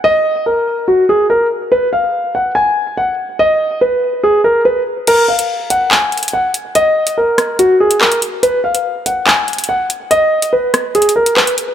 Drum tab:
CC |------------------------------------------------------------------------------------------------|------------------------------------------------------------------------------------------------|------------------------------------------------------------------------------------------------|x-----------------------------------------------------------------------------------------------|
HH |------------------------------------------------------------------------------------------------|------------------------------------------------------------------------------------------------|------------------------------------------------------------------------------------------------|x-----------------x-----------------x-----------------------x--x--x--x--------------x-----------|
CP |------------------------------------------------------------------------------------------------|------------------------------------------------------------------------------------------------|------------------------------------------------------------------------------------------------|------------------------------------------------x-----------------------------------------------|
SD |------------------------------------------------------------------------------------------------|------------------------------------------------------------------------------------------------|------------------------------------------------------------------------------------------------|------------------------------------------------------------------------------------------------|

CC |------------------------------------------------------------------------------------------------|------------------------------------------------------------------------------------------------|------------------------------------------------------------------------------------------------|
HH |x-----------------x-----------------x-----------x-----------------x-----------x-----x-----------|x-----------------x-----------------x-----------------------x--x--x--x--------------x-----------|x-----------------x-----------------x-----------x---x---x---------x-----------x-----x-----------|
CP |------------------------------------------------------------------------x-----------------------|------------------------------------------------x-----------------------------------------------|------------------------------------------------------------------------x-----------------------|
SD |------------------------------------r-----------------------------------------------------------|------------------------------------------------------------------------------------------------|------------------------------------r-----------------------------------------------------------|